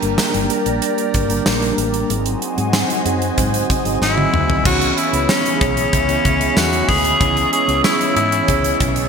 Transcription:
Already playing: G3 A#3 D4 G4 A#4 D5 A#5
0.02 G1 G3 A#3 D4 A#4, closed hi-hat
0.18 snare, tambourine
0.34 G1, closed hi-hat
0.50 G3 A#3 D4 A#4, closed hi-hat
0.66 A#1, closed hi-hat
0.82 closed hi-hat
0.98 closed hi-hat
1.14 G1, kick, closed hi-hat
1.29 G3 A#3 D4 A#4, closed hi-hat
1.46 A#1, snare, tambourine
1.61 G3 A#3 D4 A#4, closed hi-hat
1.78 A1, closed hi-hat
1.94 closed hi-hat
2.09 G#1 F#3 C4 D#4 F#4 G#4 C5 D#5 G#5, closed hi-hat
2.26 closed hi-hat
2.42 closed hi-hat
2.57 G#2 F#3 C4 D#4 G#4, closed hi-hat
2.73 snare, tambourine
2.90 closed hi-hat
3.05 F#2 F#3 C4 D#4 G#4, closed hi-hat
3.22 closed hi-hat
3.38 G#2, kick, closed hi-hat
3.54 closed hi-hat
3.70 kick, closed hi-hat
3.85 G#1 F#3 C4 D#4 G#4, closed hi-hat
4.01 G#1 E4, snare
4.17 F#3 C4 G#4 D#5, high tom
4.33 D2, mid tom
4.50 floor tom
4.64 C#2 C#3 E3 G#3 B3 C#4 E4 F#4 G#4 C#5 E5 B5, kick, crash
4.69 C#4
4.81 closed hi-hat
4.98 E4, closed hi-hat
5.13 C#2 B3 C#4 E4 G#4 C#5, closed hi-hat
5.29 C#4, snare, tambourine
5.46 closed hi-hat
5.61 B1 C#4, kick, closed hi-hat
5.77 closed hi-hat
5.91 C#2 C#3 G#3, kick, closed hi-hat
5.97 C#4
6.08 B3 C#4 E4 G#4 C#5, closed hi-hat
6.25 C#2, kick, closed hi-hat
6.41 closed hi-hat
6.56 E2 F#4, snare, tambourine
6.73 closed hi-hat
6.88 D2 G#4, kick, open hi-hat
7.05 closed hi-hat
7.20 C#2 C#3 G#3 B3 C#4 E4 G#4 C#5 C#6, kick, closed hi-hat
7.37 closed hi-hat
7.53 G#4, closed hi-hat
7.68 C#2 B3 C#4 E4 G#4 C#5, closed hi-hat
7.84 E4, snare, tambourine
8.01 closed hi-hat
8.16 G#2 G#3 C#4 E4, closed hi-hat
8.32 closed hi-hat
8.47 C#2 C#3 G#3 C#4, kick, closed hi-hat
8.64 closed hi-hat
8.80 B1, kick, closed hi-hat
8.96 closed hi-hat

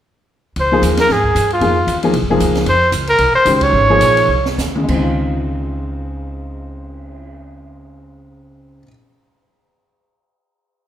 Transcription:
0.56 C#2, ride
0.60 C5
0.72 F3 A#3 D#4 G#4
0.82 D#2, hi-hat pedal, ride
0.97 A#4, snare, ride
1.09 G#2 G#4, snare
1.24 kick
1.35 G2, hi-hat pedal, ride
1.50 F4, ride
1.61 F2 F3 A#3 D#4 G#4, ride
1.87 D#2, hi-hat pedal, ride
2.03 F3 A#3 D#4 G#4, ride
2.13 C2, ride
2.22 G#1
2.30 F1 F3 A#3 D#4 G#4
2.40 C#2, hi-hat pedal, ride
2.55 snare, ride
2.66 F2 C5, ride
2.92 C#2, hi-hat pedal, ride
3.07 A#4, ride
3.18 C2, ride
3.34 C5, muted upright bass stroke
3.45 C#2 D#3 G#3 C#4 G4, hi-hat pedal, ride
3.55 C5
3.61 C#5, kick, ride
3.72 G#1
3.90 F3 A#3 D#4 G#4
4.00 A#1, hi-hat pedal, ride
4.17 ride
4.28 C2
4.46 snare
4.58 D#2, snare, hi-hat pedal
4.75 C#3, mid tom
4.83 G#3
4.88 C#2 C4, kick, crash
4.96 D#4
5.02 F4, cymbal swell

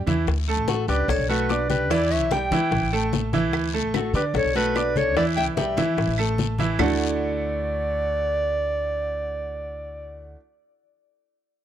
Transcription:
0.06 E2 E3 E4 E5, high bongo, high conga, short guiro
0.27 D2, high bongo, high conga, long guiro
0.48 A3 A4 A5, high conga
0.57 A1
0.68 F#4 A4, high bongo, high conga, short guiro
0.88 C#2 D4 G4 B4 D5 D6, high bongo, high conga, short guiro
1.08 B1 A4 C#5, high bongo, high conga, long guiro
1.18 B1
1.29 A3 F#4 A4 B4 A5, high bongo, high conga
1.49 D4 D5 D6, high bongo, low bongo, high conga, short guiro
1.70 G4 B4, high bongo, high conga, short guiro
1.90 E2 E3 E4 B4 D5 E5, high bongo, high conga, long guiro
2.10 C#5 E5, high conga
2.21 B1
2.31 G3 G4 E5 G5, high bongo, high conga, short guiro
2.51 E3 E4 E5, high bongo, high conga, short guiro
2.71 A1, high bongo, high conga, long guiro
2.82 A1
2.93 A3 A4 A5, high bongo, high conga
3.13 high bongo, low bongo, high conga, short guiro
3.33 E3 E4 E5, high bongo, high conga, short guiro
3.53 D2, high bongo, high conga, long guiro, claves
3.74 A3 A4 A5, high conga
3.83 A1
3.94 F#4 A4, high bongo, high conga, short guiro, claves
4.14 D3 D4 G4 B4 D5 D6, high bongo, high conga, short guiro
4.34 B1 A4 C#5, high bongo, high conga, long guiro
4.44 B1
4.55 A3 F#4 A4 B4 A5, high bongo, high conga
4.75 D4 D5 D6, high bongo, low bongo, high conga, short guiro, claves
4.96 A4 C#5, high bongo, high conga, short guiro
5.16 E2 E3 E4 B4 D5 E5, high bongo, high conga, long guiro
5.37 E5 G5, high conga, claves
5.46 B1
5.57 G3 G4 B4 E5 G5, high bongo, high conga, short guiro
5.77 E3 E4 E5, high bongo, high conga, short guiro
5.97 A1, high bongo, high conga, long guiro
6.07 A1
6.18 A3 A4 A5, high bongo, high conga, claves
6.38 high bongo, low bongo, high conga, short guiro
6.58 E3 E4 E5, high bongo, high conga, short guiro
6.79 D2 D3 A3 D4 E4 F#4 A4 D5, low bongo, low conga, long guiro, claves

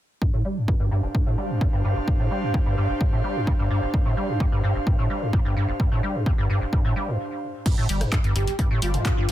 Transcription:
0.22 G2 D4, kick
0.34 A2
0.45 G3 G4
0.55 G2 F5
0.66 G2 C5, kick
0.80 G2
0.91 G2
1.03 G1
1.15 G2, kick
1.27 A2
1.38 G3
1.50 G2
1.61 G2, kick
1.73 G2
1.85 G2
1.96 G1
2.08 G2, kick
2.20 A2
2.31 G3
2.43 G2
2.54 G2, kick
2.66 G2
2.78 G2
2.89 G1
3.01 G2, kick
3.13 A2
3.24 G3
3.36 G2
3.47 G2, kick
3.59 G2
3.71 G2
3.82 G1
3.94 G2, kick
4.06 A2
4.17 G3
4.29 G2
4.40 G2, kick
4.52 G2
4.64 G2
4.75 G1
4.87 G2, kick
4.99 A2
5.10 G3
5.22 G2
5.33 G2, kick
5.45 G2
5.57 G2
5.68 G1
5.80 G2, kick
5.92 A2
6.03 G3
6.15 G2
6.26 G2, kick
6.38 G2
6.50 G2
6.61 G1
6.73 G2, kick
6.85 A2
6.96 G3
7.08 G2
7.66 G2, kick, closed hi-hat, crash
7.78 A2
7.89 G1 G3, open hi-hat
8.01 G2, cross-stick, closed hi-hat
8.12 G2, kick, clap, closed hi-hat
8.24 G2, closed hi-hat
8.35 G1 G2 G4, open hi-hat
8.47 G1, closed hi-hat
8.59 G2, kick, closed hi-hat
8.71 A2
8.82 G1 G3 F4, open hi-hat
8.94 G2, closed hi-hat
9.05 G2, kick, clap, closed hi-hat
9.17 G2
9.29 G1 G2, open hi-hat

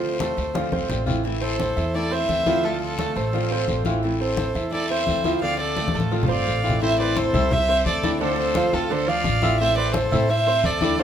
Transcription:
Already playing: D2 D3 F3 A3 C4 F4 C5
0.03 high conga
0.19 D3 A3 C4 F4 A4, high conga, short guiro
0.37 D2, muted nylon-string guitar stroke, high conga, short guiro
0.54 D3 F3 A3 C4 F4, high conga, long guiro
0.72 B1 C4 C5, high conga
0.89 A1 D3 A3 C4 F4, low conga, short guiro
1.06 E3 A3 C4 E4 F4, low conga, short guiro
1.24 E3 A3 C4 E4, high conga, long guiro
1.41 C4 A4 C5, high conga
1.59 E3 A3 C4 E4, high conga, short guiro
1.76 E2 E4 E5, muted nylon-string guitar stroke, short guiro
1.94 E3 A3 C4 E4 A4 D5, high conga, long guiro
2.11 C4 C5 E5, high conga
2.29 D2 E3 A3 C4 E4, high conga, short guiro
2.46 F3 A3 C4 E4 F4, high conga, short guiro
2.63 D3 F3 A3 C4 F4 A4, high conga, long guiro
2.81 F4 A4, high conga
2.98 D3 A3 C4 F4 A4, high conga, short guiro
3.15 A1 A4 C5, muted nylon-string guitar stroke, high conga, short guiro
3.33 D3 F3 A3 C4 F4, high conga, long guiro
3.51 C4 C5, high conga
3.68 A1 D3 A3 C4 F4, high conga, short guiro
3.85 E3 A3 C4 E4 F4, high conga, short guiro
4.02 E3 A3 C4 E4, high conga, long guiro
4.20 C4 A4 C5, high conga
4.37 E3 A3 C4 E4, high conga, short guiro
4.54 E2 E4 E5, muted nylon-string guitar stroke, short guiro
4.71 E3 A3 C4 E4 A4 D5, high conga, long guiro
4.90 C4 C5 E5, high conga
5.07 D2 E3 A3 C4 E4, high conga, short guiro
5.24 F3 A3 C4 E4 F4, high conga, short guiro
5.42 D3 F3 A3 C4 F4 D5 F5, high conga, long guiro
5.60 A4 D5, high conga
5.76 D3 A3 C4 F4 A4, high conga, short guiro
5.88 high conga
5.93 A1 F4 A4, muted nylon-string guitar stroke, short guiro
6.00 high conga
6.11 D3 F3 A3 C4 F4, long guiro
6.23 low conga
6.28 G1 C4 C5 D5 F5
6.46 A1 D3 A3 C4 F4, short guiro
6.64 E3 A3 C4 E4 F4, short guiro
6.70 low conga
6.81 E3 A3 C4 E4 C5 E5, high conga, long guiro
6.99 C4 B4 C5 D5 C6, high conga
7.16 A4 C5, high conga, short guiro
7.33 C2 A3 C4 E4 E5 E6, low conga, short guiro
7.51 C5 E5, muted nylon-string guitar stroke, high conga, low conga, long guiro
7.68 C4 C5 C6, high conga
7.86 D2 A4 D5, high conga, short guiro
8.03 A3 C4 D4 E4 D5 D6, high conga, short guiro
8.20 D3 A3 C4 D4 F4 A4 C5 D5, high conga, long guiro
8.38 A4 C5, high conga
8.55 F3 F4 F5, high conga, short guiro
8.73 D2 A3 C4 F4 A4, high conga, short guiro
8.90 D3 D4 A4 C5 D5, muted nylon-string guitar stroke, high conga, long guiro
9.07 F3 F4 D5 F5, high conga
9.24 A1, high conga, short guiro
9.42 A3 C4 E4 F4 E5 E6, high conga, short guiro
9.59 E3 A3 C4 E4 C5 E5, high conga, long guiro
9.77 C4 B4 C5 D5 C6, high conga
9.94 A4 C5, high conga, short guiro
10.11 A2 A3 C4 E4 E5 E6, low conga, short guiro
10.29 C5 E5, muted nylon-string guitar stroke, high conga, long guiro
10.46 C4 C5 C6, high conga
10.64 D2 A4 D5, high conga, short guiro
10.81 A3 C4 D4 E4 D5 D6, high conga, short guiro
10.98 D3 A3 D4 C5 D5, high conga, long guiro

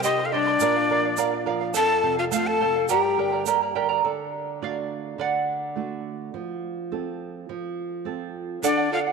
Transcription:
Already playing: C3
0.03 D#4 G4 C5 D#5 G5 C6, shaker
0.19 C5 D#5 C6
0.24 A4 F5
0.32 G3 D4 G4 C5 D5 D#5 G5 C6
0.47 C5 D#5 C6
0.60 A#2 A#4 D5 F5, shaker
0.76 D5 F5
0.90 F3 A#4 D5 F5
1.05 D5 F5
1.17 D4 A#4 D5 F5, shaker
1.31 D5 F5
1.46 F3 A#4 D5 F5
1.61 D5 F5
1.74 F2 A4 C5 F5 A5, shaker
1.89 C5 F5
2.03 C3 A4 C5 F5
2.17 F4 C5 F5
2.31 A3 F4 A4 C5 F5, shaker
2.46 A4 C5 F5 A5
2.60 C3 A4 C5 F5
2.76 C5 F5
2.88 G2 G4 A#4 D5 G5 A#5, shaker
3.03 A#4 D5 A#5
3.17 D3 A#4 D5 G5 A#5
3.32 A#4 D5 A#5
3.46 A#3 G4 A#4 D5 G5 A#5, shaker
3.62 A#4 D5 A#5
3.75 D3 G4 A#4 D5 G5 A#5
3.89 A#4 D5 A#5
4.04 D3 A4 D5
4.62 A3 D4 F#4 D5 F5
5.18 D3 D5 F#5
5.76 A3 D4 F#4
6.34 F3
6.92 C4 F4 A4
7.49 F3
8.05 C4 F4 A4
8.63 D3 D4 A4 D5 F#5, shaker
8.77 D5 F#5
8.92 F4 A4 D5 F5 F#5
9.07 D5 F#5

